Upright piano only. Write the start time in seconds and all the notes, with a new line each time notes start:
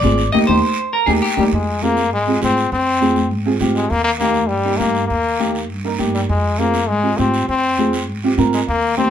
0.03 C4 F4 G#4
0.33 A#3 D#4 G4
0.49 A#3 D#4 G4
1.07 A#3 D#4 G4
1.37 A#3 D#4 G4
1.82 C4 F4 G#4
2.27 C4 F4 G#4
2.41 C4 F4 G#4
3.01 C4 F4 G#4
3.46 C4 F4 G#4
3.60 C4 F4 G4
4.20 A#3 D#4 G4
4.65 A#3 D#4 G4
4.79 A#3 D#4 G4
5.39 A#3 D#4 G4
5.84 A#3 D#4 A#4
5.99 A#3 D#4 G4
6.58 C4 F4 G#4
7.03 C4 F4 G#4
7.17 C4 F4 G4
7.78 C4 F4 G#4
8.24 C4 F4 G4
8.37 C4 F4 A#4
8.97 A#3 D#4 G4